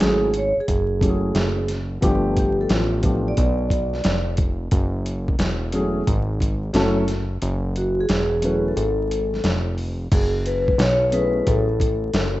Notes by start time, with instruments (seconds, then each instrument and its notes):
Already playing: vibraphone G#4
0.00 analog synth bass G#1, grand piano F#3 A3 C#4 E4 G#4, snare, closed hi-hat
0.34 vibraphone C#5, closed hi-hat
0.57 analog synth bass F#1, vibraphone G#4
0.68 analog synth bass F#1, kick, closed hi-hat
1.00 grand piano F#3 A3 C#4 E4 G4, kick, closed hi-hat
1.09 grand piano G#4
1.35 analog synth bass F#1, snare, closed hi-hat
1.68 snare, closed hi-hat
2.01 analog synth bass G1, grand piano F3 A3 B3 D4 G4, kick, closed hi-hat
2.37 vibraphone G4, kick, closed hi-hat
2.61 vibraphone A4
2.69 analog synth bass A1, vibraphone F4, snare, closed hi-hat
3.02 grand piano F3 A3 B3 D4 G4, kick, closed hi-hat
3.28 vibraphone D5
3.37 analog synth bass B1, kick, closed hi-hat
3.70 kick, closed hi-hat
3.94 snare
4.04 analog synth bass F1, snare, closed hi-hat
4.37 kick, closed hi-hat
4.71 analog synth bass F#1, kick, closed hi-hat
5.06 closed hi-hat
5.28 kick
5.39 analog synth bass E1, snare, closed hi-hat
5.72 grand piano F#3 A3 C#4 E4 G#4, closed hi-hat
6.07 analog synth bass G#1, kick, closed hi-hat
6.40 kick, closed hi-hat
6.73 analog synth bass F#1, grand piano F#3 A3 C#4 E4 A4, snare, closed hi-hat
7.08 snare, closed hi-hat
7.42 analog synth bass F#1, closed hi-hat
7.76 vibraphone F#4, closed hi-hat
8.00 vibraphone G#4
8.09 analog synth bass E1, snare, closed hi-hat
8.42 grand piano F#3 A3 C#4 E4 B4, closed hi-hat
8.68 vibraphone A4
8.77 analog synth bass G#1, closed hi-hat
9.11 closed hi-hat
9.34 snare
9.44 analog synth bass F1, snare, closed hi-hat
9.78 open hi-hat
10.12 analog synth bass F#1, vibraphone G#4, kick, closed hi-hat, crash
10.46 vibraphone B4, closed hi-hat
10.68 kick
10.78 analog synth bass B1, vibraphone C#5, snare, closed hi-hat
11.11 grand piano F#3 A3 C#4 E4 G#4, vibraphone B4, closed hi-hat
11.47 analog synth bass A1, vibraphone A4, kick, closed hi-hat
11.80 kick, closed hi-hat
12.13 analog synth bass F#1, snare, closed hi-hat